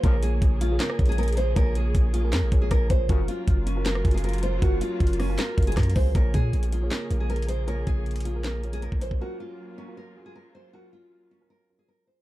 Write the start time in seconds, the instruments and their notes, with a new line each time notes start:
Already playing: string section A#3
0.03 808-style bass A#1, brass ensemble C#2 A#2 F3, string section C#3 G#4, grand piano A#3 F4 G#4 C#5, nylon-string guitar A#4, kick, closed hi-hat
0.23 nylon-string guitar G#4, closed hi-hat
0.42 808-style bass A#1, kick, closed hi-hat
0.61 nylon-string guitar F4, closed hi-hat
0.70 grand piano A#3 F4 G#4 C#5
0.80 nylon-string guitar A#4, snare, clap, closed hi-hat
0.90 cross-stick
0.98 808-style bass A#1, grand piano A#3 F4 G#4 C#5, kick, closed hi-hat
1.06 nylon-string guitar G#4, closed hi-hat
1.12 closed hi-hat
1.18 nylon-string guitar A#4, closed hi-hat
1.23 closed hi-hat
1.28 closed hi-hat
1.33 closed hi-hat
1.37 nylon-string guitar C5, closed hi-hat
1.55 808-style bass A#1, grand piano A#3 F4 G#4 C#5, nylon-string guitar A#4, kick, closed hi-hat
1.75 nylon-string guitar G#4, closed hi-hat
1.95 808-style bass A#1, kick, closed hi-hat
2.14 nylon-string guitar F4, closed hi-hat
2.23 grand piano A#3 F4 G#4 A#4
2.33 808-style bass F2, nylon-string guitar A#4, snare, clap, closed hi-hat
2.42 808-style bass A#1
2.52 808-style bass A#1, grand piano A#3 F4 G#4 C#5, kick, closed hi-hat
2.62 nylon-string guitar G#4
2.71 808-style bass A#1, nylon-string guitar A#4, kick, cross-stick, closed hi-hat
2.90 808-style bass A#1, grand piano A#3 F4 G#4 C#5, nylon-string guitar C5, kick, closed hi-hat
3.09 808-style bass F#1, brass ensemble A#1 F#2 C#3, grand piano F#3 C#4 F4 A#4, string section F#3 A#3 F4, nylon-string guitar F#4, kick, closed hi-hat
3.28 nylon-string guitar F4, closed hi-hat
3.48 808-style bass F#1, kick, closed hi-hat
3.66 nylon-string guitar C#4, closed hi-hat
3.75 grand piano F#3 C#4 F4 A#4
3.86 nylon-string guitar A#4, snare, clap, closed hi-hat
3.95 cross-stick
4.04 808-style bass F#1, grand piano F#3 C#4 F4 G#4, kick, closed hi-hat
4.11 nylon-string guitar G#4, closed hi-hat
4.18 closed hi-hat
4.24 nylon-string guitar A#4, closed hi-hat
4.29 closed hi-hat
4.33 closed hi-hat
4.38 closed hi-hat
4.43 nylon-string guitar C5, closed hi-hat
4.62 808-style bass F#1, grand piano F#3 C#4 F4 A#4, nylon-string guitar F#4, kick, closed hi-hat
4.81 nylon-string guitar F4, closed hi-hat
5.00 808-style bass F#1, kick, closed hi-hat
5.07 closed hi-hat
5.13 closed hi-hat
5.20 nylon-string guitar C#4, cross-stick, open hi-hat
5.28 grand piano F#3 C#4 F4 A#4
5.38 nylon-string guitar A#4, snare, clap, closed hi-hat
5.57 808-style bass F#1, grand piano F#3 C#4 F4 A#4, kick, closed hi-hat
5.63 closed hi-hat
5.67 nylon-string guitar G#4, closed hi-hat
5.72 closed hi-hat
5.77 808-style bass F#2, nylon-string guitar A#4, kick, cross-stick, snare, closed hi-hat
5.83 closed hi-hat
5.90 closed hi-hat
5.95 808-style bass C#2, grand piano F#3 C#4 F4 G#4, nylon-string guitar C5, kick, open hi-hat
6.15 808-style bass A#1, string section C#3 A#3 G#4, grand piano A#3 F4 G#4 C#5, nylon-string guitar A#4, kick, closed hi-hat
6.34 808-style bass A#2, nylon-string guitar G#4, kick, closed hi-hat
6.53 808-style bass A#1, closed hi-hat
6.63 closed hi-hat
6.72 nylon-string guitar F4, closed hi-hat
6.82 grand piano A#3 F4 G#4 C#5
6.91 nylon-string guitar A#4, snare, clap, closed hi-hat
7.10 808-style bass A#1, grand piano A#3 F4 G#4 C#5, closed hi-hat
7.20 nylon-string guitar G#4
7.30 nylon-string guitar A#4, closed hi-hat
7.36 closed hi-hat
7.42 closed hi-hat
7.49 nylon-string guitar C5, closed hi-hat
7.67 grand piano A#3 F4 G#4 C#5, nylon-string guitar A#4, closed hi-hat
7.87 808-style bass A#1, nylon-string guitar G#4, kick, closed hi-hat
8.06 closed hi-hat
8.11 closed hi-hat
8.16 closed hi-hat
8.20 closed hi-hat
8.25 nylon-string guitar F4, closed hi-hat
8.34 grand piano A#3 F4 G#4 A#4
8.44 nylon-string guitar A#4, snare, clap, closed hi-hat
8.63 grand piano A#3 F4 G#4 C#5, closed hi-hat
8.73 nylon-string guitar G#4, closed hi-hat
8.82 nylon-string guitar A#4, closed hi-hat
8.92 808-style bass A#1, kick
9.01 grand piano A#3 F4 G#4 C#5, nylon-string guitar C5, closed hi-hat
9.11 808-style bass A#1, kick
9.20 grand piano F#3 C#4 F4 A#4, string section F#3 F4, nylon-string guitar F#4
9.40 nylon-string guitar F4
9.78 nylon-string guitar C#4
9.87 grand piano F#3 C#4 F4 A#4
9.97 nylon-string guitar A#4
10.16 grand piano F#3 C#4 F4 G#4
10.26 nylon-string guitar G#4
10.35 nylon-string guitar A#4
10.55 nylon-string guitar C5
10.73 grand piano F#3 C#4 F4 A#4, nylon-string guitar F#4
10.93 nylon-string guitar F4
11.31 nylon-string guitar C#4
11.40 grand piano F#3 C#4 F4 A#4
11.50 nylon-string guitar A#4
11.69 grand piano F#3 C#4 F4 A#4
11.79 nylon-string guitar G#4
11.88 nylon-string guitar A#4
12.06 grand piano F#3 C#4 F4 G#4, nylon-string guitar C5